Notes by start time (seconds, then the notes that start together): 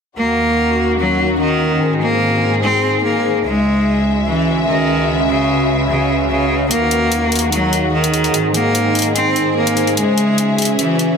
0.18 D#2 D#3 A#3 F#4
0.28 C#4 F#4
0.91 A#4
0.99 F#3
1.40 D#3
1.81 G#2 C4 D#4 G#4
1.97 G#4 C5
2.01 A#3
2.63 C4
3.03 A#3
3.44 C#2 C#3 G#3 C#4 E5
3.50 F#4
3.81 B4
4.25 E3 E5
4.67 D#3
5.28 C#3
5.89 C#3
6.30 C#3
6.71 D#2 D#3 A#3 D#4 F#4, closed hi-hat
6.84 G#4
6.91 closed hi-hat
7.01 C#5
7.12 closed hi-hat
7.32 closed hi-hat
7.35 closed hi-hat
7.39 closed hi-hat
7.44 F#5
7.52 F#3, closed hi-hat
7.73 closed hi-hat
7.93 D#3
8.04 closed hi-hat
8.14 closed hi-hat
8.24 closed hi-hat
8.34 G#2 C4 G#4, closed hi-hat
8.54 A#3, closed hi-hat
8.68 C5
8.75 closed hi-hat
8.95 closed hi-hat
8.99 closed hi-hat
9.02 closed hi-hat
9.16 C4, closed hi-hat
9.36 closed hi-hat
9.56 A#3
9.67 closed hi-hat
9.77 closed hi-hat
9.87 closed hi-hat
9.97 C#3 G#3 C#4 E5, closed hi-hat
10.18 closed hi-hat
10.27 F#4
10.33 B4
10.38 closed hi-hat
10.49 E5
10.58 closed hi-hat
10.62 closed hi-hat
10.65 closed hi-hat
10.79 E3, closed hi-hat
10.99 closed hi-hat